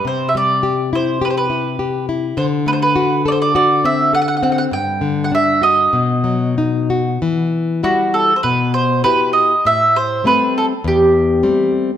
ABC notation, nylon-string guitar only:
X:1
M:4/4
L:1/8
Q:1/4=101
K:Bphr
V:1 name="Nylon-string guitar"
C, G, G E G E G E | D, A, F A F C A C | G,, D, D F B,, F, ^D F | [K:Em] E,2 [G,EF]2 B,,2 [EFG]2 |
A,,2 [G,A,C]2 E,,2 [G,A,C]2 |]